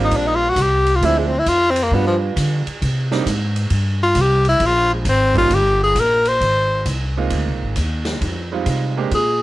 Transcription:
Already playing: G3 A#3 C4 D4 F4
0.04 D#4
0.11 A#1, kick, ride
0.16 D4
0.28 D#4
0.36 F4
0.50 F#4
0.56 C2, kick, hi-hat pedal, ride
0.61 G4
0.87 ride
0.95 F4
1.01 D2 F3 G#3 C4 D4 E4, kick, ride
1.05 E4
1.18 G#3
1.27 C4
1.39 E4
1.46 F2 F4, kick, hi-hat pedal, ride
1.70 C4
1.76 ride
1.83 A#3
1.91 G2 F3 G3 B3 D4 F4, kick
2.07 F3
2.36 D3, kick, hi-hat pedal, ride
2.66 muted upright bass stroke, ride
2.82 C3, kick, ride
3.11 G3 A#3 C4 D4 D#4, snare
3.26 G#2, kick, hi-hat pedal, ride
3.56 ride
3.70 G2, kick, ride
4.03 F4
4.15 C2, kick, hi-hat pedal, ride
4.21 G4
4.45 ride
4.49 E4
4.60 A#1, kick, ride
4.66 F4
4.94 G#3
5.05 G#1, kick, hi-hat pedal, ride
5.09 C4
5.35 G3 A#3 C#4 D#4 F4, kick, ride
5.50 G1, kick, ride
5.54 G4
5.84 G#4
5.95 A#1, kick, hi-hat pedal, ride
6.00 A#4
6.25 C5, ride
6.40 G#1, kick, ride
6.86 C2, kick, hi-hat pedal, ride
7.17 G#3 A#3 C4 D#4 F4
7.30 D2, kick, ride
7.46 C2
7.62 G#1
7.76 D#2, kick, hi-hat pedal, ride
8.05 snare, ride
8.21 F2, kick, ride
8.52 G3 G#3 C4 D#4 F4
8.66 C3, kick, hi-hat pedal, ride
8.98 G#3 A#3 C4 D4 G4
9.11 A#2 G#4, kick, ride

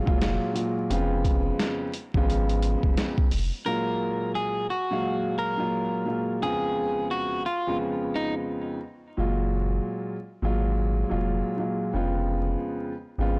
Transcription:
0.05 F1 A#2 F#3 G#3 F4, kick
0.21 snare, closed hi-hat
0.53 A#2 F#3 G#3 F4, closed hi-hat
0.90 F1 F2 C#3 G#3 B3 F4, closed hi-hat
1.25 kick, closed hi-hat
1.59 snare, closed hi-hat
1.94 closed hi-hat
2.14 G#1 F2 C#3 G#3 B3 F4, kick
2.30 closed hi-hat
2.49 closed hi-hat
2.62 closed hi-hat
2.83 F1, kick
2.97 snare, closed hi-hat
3.18 kick
3.31 F1, open hi-hat
3.65 A#2 F#3 G#3 F4 A#4
4.35 G#4
4.70 F#4
4.90 A#2 F#3 G#3 F5
5.39 A#4
5.57 A#2 F#3 G#3 F4
6.05 A#2 F#3 G#3 F4
6.42 F2 C#3 G#3 B3 F4 G#4
7.11 F#4
7.46 F4
7.67 F2 C#3 G#3 B3 F4
8.16 D#4
9.17 F#1 A#2 F#3 G#3 F4
10.42 G#1 A#2 F#3 G#3 F4
11.09 F1 A#2 F#3 G#3 F4
11.57 A#2 F#3 G#3 F4
11.93 F1 F2 C#3 G#3 B3 F4
13.18 G#1 F2 C#3 G#3 B3 F4

